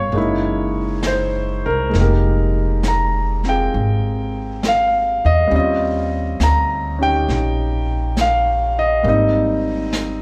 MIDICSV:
0, 0, Header, 1, 4, 480
1, 0, Start_track
1, 0, Tempo, 899550
1, 1035, Time_signature, 4, 2, 24, 8
1, 2472, Tempo, 882353
1, 5511, End_track
2, 0, Start_track
2, 0, Title_t, "Grand piano"
2, 0, Program_c, 0, 0
2, 0, Control_c, 0, 64, 127
2, 0, Note_on_c, 0, 55, 49
2, 0, Note_on_c, 0, 58, 47
2, 0, Note_on_c, 0, 61, 50
2, 0, Note_on_c, 0, 65, 53
2, 0, Note_on_c, 0, 73, 81
2, 0, Note_on_c, 0, 77, 65
2, 60, Note_off_c, 0, 55, 0
2, 67, Note_off_c, 0, 58, 0
2, 68, Note_on_c, 0, 56, 50
2, 75, Note_on_c, 0, 58, 49
2, 78, Control_c, 0, 64, 0
2, 81, Note_off_c, 0, 61, 0
2, 82, Note_off_c, 0, 77, 0
2, 84, Note_on_c, 0, 63, 43
2, 91, Note_off_c, 0, 65, 0
2, 93, Note_on_c, 0, 64, 62
2, 176, Control_c, 0, 64, 127
2, 540, Note_off_c, 0, 73, 0
2, 571, Note_on_c, 0, 72, 74
2, 884, Note_off_c, 0, 72, 0
2, 885, Note_on_c, 0, 70, 76
2, 1003, Note_off_c, 0, 56, 0
2, 1011, Note_on_c, 0, 56, 50
2, 1023, Note_off_c, 0, 58, 0
2, 1030, Note_off_c, 0, 70, 0
2, 1031, Note_on_c, 0, 58, 42
2, 1041, Note_off_c, 0, 63, 0
2, 1042, Control_c, 0, 64, 0
2, 1045, Note_off_c, 0, 64, 0
2, 1052, Note_on_c, 0, 63, 44
2, 1067, Note_on_c, 0, 70, 66
2, 1072, Note_on_c, 0, 67, 54
2, 1126, Control_c, 0, 64, 127
2, 1537, Note_on_c, 0, 82, 72
2, 1839, Note_off_c, 0, 70, 0
2, 1845, Note_on_c, 0, 60, 41
2, 1846, Note_off_c, 0, 82, 0
2, 1853, Note_on_c, 0, 65, 44
2, 1861, Note_on_c, 0, 68, 50
2, 1862, Note_on_c, 0, 79, 86
2, 2459, Note_off_c, 0, 79, 0
2, 2499, Note_on_c, 0, 77, 86
2, 2807, Note_off_c, 0, 77, 0
2, 2812, Note_on_c, 0, 75, 91
2, 2930, Note_on_c, 0, 55, 56
2, 2940, Note_off_c, 0, 56, 0
2, 2942, Note_off_c, 0, 60, 0
2, 2950, Note_off_c, 0, 58, 0
2, 2950, Note_on_c, 0, 60, 46
2, 2953, Note_off_c, 0, 75, 0
2, 2956, Note_off_c, 0, 65, 0
2, 2959, Control_c, 0, 64, 0
2, 2960, Note_off_c, 0, 68, 0
2, 2961, Note_off_c, 0, 63, 0
2, 2970, Note_on_c, 0, 61, 51
2, 2971, Note_off_c, 0, 67, 0
2, 2975, Note_on_c, 0, 75, 77
2, 2988, Note_on_c, 0, 65, 58
2, 3063, Control_c, 0, 64, 127
2, 3451, Note_on_c, 0, 82, 87
2, 3744, Note_off_c, 0, 61, 0
2, 3752, Note_on_c, 0, 61, 48
2, 3755, Note_off_c, 0, 75, 0
2, 3758, Note_on_c, 0, 63, 40
2, 3764, Note_off_c, 0, 82, 0
2, 3767, Note_on_c, 0, 67, 55
2, 3774, Note_on_c, 0, 79, 96
2, 4380, Note_off_c, 0, 79, 0
2, 4418, Note_on_c, 0, 77, 85
2, 4726, Note_off_c, 0, 77, 0
2, 4733, Note_on_c, 0, 75, 83
2, 4856, Note_off_c, 0, 55, 0
2, 4864, Note_on_c, 0, 55, 54
2, 4873, Note_off_c, 0, 60, 0
2, 4873, Note_off_c, 0, 61, 0
2, 4873, Note_off_c, 0, 75, 0
2, 4873, Note_on_c, 0, 58, 45
2, 4875, Note_off_c, 0, 63, 0
2, 4880, Note_off_c, 0, 67, 0
2, 4881, Control_c, 0, 64, 0
2, 4886, Note_on_c, 0, 60, 52
2, 4892, Note_off_c, 0, 65, 0
2, 4893, Note_on_c, 0, 63, 59
2, 4899, Note_on_c, 0, 75, 73
2, 4987, Control_c, 0, 64, 127
2, 5511, Note_off_c, 0, 55, 0
2, 5511, Note_off_c, 0, 58, 0
2, 5511, Note_off_c, 0, 60, 0
2, 5511, Note_off_c, 0, 63, 0
2, 5511, Note_off_c, 0, 75, 0
2, 5511, End_track
3, 0, Start_track
3, 0, Title_t, "Upright bass"
3, 0, Program_c, 1, 32
3, 0, Note_on_c, 1, 31, 73
3, 61, Note_off_c, 1, 31, 0
3, 64, Note_on_c, 1, 30, 80
3, 860, Note_off_c, 1, 30, 0
3, 888, Note_on_c, 1, 36, 62
3, 1026, Note_off_c, 1, 36, 0
3, 1039, Note_on_c, 1, 29, 91
3, 1975, Note_off_c, 1, 29, 0
3, 1997, Note_on_c, 1, 32, 73
3, 2781, Note_off_c, 1, 32, 0
3, 2806, Note_on_c, 1, 40, 71
3, 2944, Note_off_c, 1, 40, 0
3, 2951, Note_on_c, 1, 39, 88
3, 3411, Note_off_c, 1, 39, 0
3, 3432, Note_on_c, 1, 38, 85
3, 3894, Note_off_c, 1, 38, 0
3, 3914, Note_on_c, 1, 34, 82
3, 4851, Note_off_c, 1, 34, 0
3, 4871, Note_on_c, 1, 32, 92
3, 5511, Note_off_c, 1, 32, 0
3, 5511, End_track
4, 0, Start_track
4, 0, Title_t, "Drums"
4, 69, Note_on_c, 9, 25, 41
4, 548, Note_on_c, 9, 38, 46
4, 548, Note_on_c, 9, 44, 50
4, 601, Note_off_c, 9, 38, 0
4, 601, Note_off_c, 9, 44, 0
4, 1032, Note_off_c, 9, 25, 0
4, 1032, Note_on_c, 9, 25, 36
4, 1032, Note_on_c, 9, 38, 33
4, 1086, Note_off_c, 9, 38, 0
4, 1511, Note_on_c, 9, 38, 50
4, 1511, Note_on_c, 9, 44, 45
4, 1565, Note_off_c, 9, 38, 0
4, 1565, Note_off_c, 9, 44, 0
4, 1833, Note_on_c, 9, 38, 24
4, 1887, Note_off_c, 9, 38, 0
4, 1993, Note_off_c, 9, 25, 0
4, 1993, Note_on_c, 9, 25, 36
4, 2471, Note_on_c, 9, 38, 51
4, 2471, Note_on_c, 9, 44, 54
4, 2526, Note_off_c, 9, 38, 0
4, 2526, Note_off_c, 9, 44, 0
4, 2949, Note_off_c, 9, 25, 0
4, 2949, Note_on_c, 9, 25, 36
4, 3433, Note_on_c, 9, 38, 50
4, 3433, Note_on_c, 9, 44, 58
4, 3488, Note_off_c, 9, 38, 0
4, 3488, Note_off_c, 9, 44, 0
4, 3918, Note_off_c, 9, 25, 0
4, 3918, Note_on_c, 9, 25, 37
4, 3918, Note_on_c, 9, 38, 33
4, 3972, Note_off_c, 9, 38, 0
4, 4395, Note_on_c, 9, 38, 47
4, 4395, Note_on_c, 9, 44, 62
4, 4449, Note_off_c, 9, 38, 0
4, 4449, Note_off_c, 9, 44, 0
4, 4874, Note_off_c, 9, 25, 0
4, 4874, Note_on_c, 9, 25, 38
4, 5351, Note_on_c, 9, 38, 53
4, 5351, Note_on_c, 9, 44, 58
4, 5406, Note_off_c, 9, 38, 0
4, 5406, Note_off_c, 9, 44, 0
4, 5511, Note_off_c, 9, 25, 0
4, 5511, End_track
0, 0, End_of_file